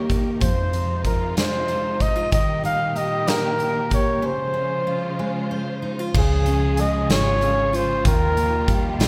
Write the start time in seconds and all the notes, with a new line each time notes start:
Already playing: D#2 D#3 G3 A#3 G4 A#4 C#5
0.09 D#4, kick, closed hi-hat
0.40 F2 C3 F3 G#3 D#4 F4 C5, kick, closed hi-hat
0.73 D#4, closed hi-hat
1.05 F4 A#4, kick, closed hi-hat
1.37 G#3 C5, snare, closed hi-hat
1.68 C5, closed hi-hat
2.00 D#4 D#5, kick, closed hi-hat
2.16 F4
2.32 D#2 A#2 D#3 G3 G4 A#4 D#5, kick, closed hi-hat
2.64 D#4 F5, closed hi-hat
2.96 G4 D#5, closed hi-hat
3.27 A#3 A#4, snare, closed hi-hat
3.59 A#4, closed hi-hat
3.90 G4 C#5, kick, closed hi-hat
4.22 C#3 F3 G#3 F4 C5
4.54 C#4
4.87 F4
5.19 G#3
5.51 C5
5.82 D#4
5.99 F4
6.14 C#2 C#3 F3 G#3 F4 G#4, kick, crash
6.46 C#4, closed hi-hat
6.77 G#3 D#5, closed hi-hat
7.10 G#1 F4 C#5, snare, closed hi-hat
7.41 C#4, closed hi-hat
7.73 F4 C5, closed hi-hat
8.05 D#2 D#3 F3 A#3 G4 A#4, kick, closed hi-hat
8.37 A#3, closed hi-hat
8.68 G3, kick, closed hi-hat
8.99 A#1 F4, snare, closed hi-hat